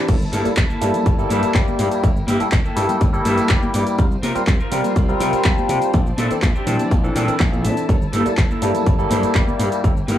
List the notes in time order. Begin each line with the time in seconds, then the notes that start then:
Already playing: E4 A5
0.08 G1 G3 A#3 E4 A4, kick, closed hi-hat, crash, shaker
0.21 tambourine, shaker
0.32 G2 A#3 E4 A4, open hi-hat, high conga, shaker
0.45 G3 A#3 E4 A4, muted slap bass stroke, closed hi-hat, tambourine, shaker
0.57 G1, kick, clap, closed hi-hat, tambourine, shaker
0.69 A#3 E4 A4, tambourine, shaker
0.81 G2 G3 A#3 E4 A4, open hi-hat, shaker
0.94 closed hi-hat, tambourine, high conga, low conga, shaker
1.06 G1, kick, closed hi-hat, tambourine, shaker
1.18 G3 A#3 E4 A4, tambourine, shaker
1.29 G2 A#3 E4 A4, open hi-hat, low conga, shaker
1.42 muted slap bass stroke, closed hi-hat, tambourine, shaker
1.54 G1 G3 G4, kick, clap, closed hi-hat, tambourine, shaker
1.67 tambourine, high conga, shaker
1.79 G2, muted clean electric guitar stroke, open hi-hat, shaker
1.91 muted clean electric guitar stroke, closed hi-hat, tambourine, shaker
2.03 G1 G3 A#3 E4 A4 G5, kick, closed hi-hat, tambourine, shaker
2.16 tambourine, shaker
2.27 G2 A#3 E4 G4, open hi-hat, high conga, shaker
2.40 G3 A#3 E4 A4, muted slap bass stroke, closed hi-hat, tambourine, shaker
2.52 G1, kick, clap, closed hi-hat, shaker
2.64 A#3 E4 A4, tambourine, shaker
2.76 G2 G3 A#3 E4 A4, open hi-hat, shaker
2.89 closed hi-hat, tambourine, high conga, low conga, shaker
3.01 G1, kick, closed hi-hat, tambourine, shaker
3.13 G3 A#3 E4 A4, tambourine, shaker
3.25 G2 A#3 E4 A4, open hi-hat, low conga, shaker
3.38 muted slap bass stroke, closed hi-hat, tambourine, shaker
3.49 G1 G3 A#3 G4 G5, kick, clap, closed hi-hat, shaker
3.62 tambourine, high conga, shaker
3.74 G2 D5, muted clean electric guitar stroke, open hi-hat, shaker
3.86 muted clean electric guitar stroke, closed hi-hat, tambourine, shaker
3.98 C2 G3 C4 F4 A#4 C5, kick, closed hi-hat, tambourine, shaker
4.11 tambourine, shaker
4.22 C3 C4 F4 A#4, open hi-hat, high conga, shaker
4.35 G3 C4 F4 A#4, muted slap bass stroke, closed hi-hat, tambourine, shaker
4.47 C2, kick, clap, closed hi-hat, shaker
4.59 C4 F4 A#4, tambourine, shaker
4.72 C3 G3 C4 F4 A#4, open hi-hat, shaker
4.84 closed hi-hat, tambourine, high conga, low conga, shaker
4.96 C2, kick, closed hi-hat, tambourine, shaker
5.08 G3 C4 F4 A#4, tambourine, shaker
5.20 C3 C4 F4 A#4, open hi-hat, low conga, shaker
5.33 muted slap bass stroke, closed hi-hat, tambourine, shaker
5.44 C2 F4 A5, kick, clap, closed hi-hat, shaker
5.58 tambourine, high conga, shaker
5.68 C3, muted clean electric guitar stroke, open hi-hat, shaker
5.81 muted clean electric guitar stroke, closed hi-hat, tambourine, shaker
5.94 A#1 E3 C4 D4 E4 A4 D5 A5, kick, closed hi-hat, shaker
6.07 tambourine, shaker
6.17 A#2 C4 D4 E4 A4, open hi-hat, high conga, shaker
6.30 E3 C4 D4 A4, muted slap bass stroke, closed hi-hat, tambourine, shaker
6.42 A#1, muted clean electric guitar stroke, kick, clap, closed hi-hat, shaker
6.54 C4 D4 E4 G4, tambourine, shaker
6.66 A#2 E3 C4 D4 A5, open hi-hat, low conga, shaker
6.79 closed hi-hat, tambourine, high conga, low conga, shaker
6.91 A#1, kick, closed hi-hat, tambourine, shaker
7.03 E3 C4 D4 A4, tambourine, shaker
7.15 A#2 E3 C4 D4 E4 A4 A#4 G5, open hi-hat, low conga, shaker
7.28 E3 C4 D4 A#4, muted slap bass stroke, closed hi-hat, tambourine, shaker
7.40 A#1 F5, kick, clap, closed hi-hat, shaker
7.52 E3 C4 D4 A4, tambourine, high conga, shaker
7.64 A#2 E5, muted clean electric guitar stroke, open hi-hat, shaker
7.76 muted clean electric guitar stroke, closed hi-hat, tambourine, shaker
7.88 G1 G3 A#3 E4 A4, kick, closed hi-hat, tambourine, shaker
8.01 tambourine, shaker
8.13 G2 A#3 E4 A4, open hi-hat, high conga, shaker
8.25 G3 A#3 E4 A4, muted slap bass stroke, closed hi-hat, tambourine, shaker
8.37 G1, kick, clap, closed hi-hat, tambourine, shaker
8.49 A#3 E4 A4, tambourine, shaker
8.62 G2 G3 A#3 E4 A4, open hi-hat, shaker
8.74 closed hi-hat, tambourine, high conga, low conga, shaker
8.86 G1, kick, closed hi-hat, tambourine, shaker
8.98 G3 A#3 E4 A4, tambourine, shaker
9.10 G2 A#3 E4 C5, open hi-hat, low conga, shaker
9.23 muted slap bass stroke, closed hi-hat, tambourine, shaker
9.35 G1 G3 A#3 E4 G4, kick, clap, closed hi-hat, shaker
9.47 tambourine, high conga, shaker
9.59 G2, muted clean electric guitar stroke, open hi-hat, shaker
9.71 muted clean electric guitar stroke, closed hi-hat, tambourine, shaker
9.83 G1 G3 A#3 E4 A4 G5, kick, closed hi-hat, shaker
9.96 tambourine, shaker
10.07 G2 A#3 E4 A#4, open hi-hat, high conga, shaker